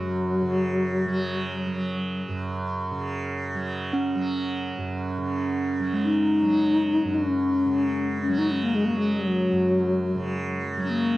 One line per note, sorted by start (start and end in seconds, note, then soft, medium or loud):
0.00 2.28 F#2 medium
0.00 0.41 C#3 soft
0.00 1.06 F#3 medium
0.00 2.23 F#3 medium
0.41 2.91 C#3 medium
1.06 1.66 F#3 medium
1.66 3.54 F#3 medium
2.28 4.77 F#2 medium
2.91 5.17 C#3 medium
3.54 4.15 F#3 soft
3.93 5.57 C#4 medium
4.15 5.79 F#3 medium
4.78 7.04 F#2 medium
5.17 7.65 C#3 medium
5.79 6.42 F#3 soft
5.94 11.18 G#3 soft
6.04 7.16 D#4 medium
6.42 8.28 F#3 medium
7.04 9.51 F#2 soft
7.14 8.21 C#4 medium
7.65 10.14 C#3 medium
8.21 8.40 C#4 medium
8.28 8.89 F#3 medium
8.38 8.48 D#4 medium
8.48 8.65 C#4 medium
8.48 8.52 D#4 medium
8.63 8.76 A#3 medium
8.75 8.87 G#3 medium
8.85 10.77 F#3 soft
8.85 8.99 A#3 medium
8.97 9.15 G#3 medium
9.13 10.62 F#3 medium
9.51 11.18 F#2 soft
10.15 11.18 C#3 medium
10.77 11.18 F#3 medium
10.84 10.92 C#4 soft
10.90 11.18 A#3 medium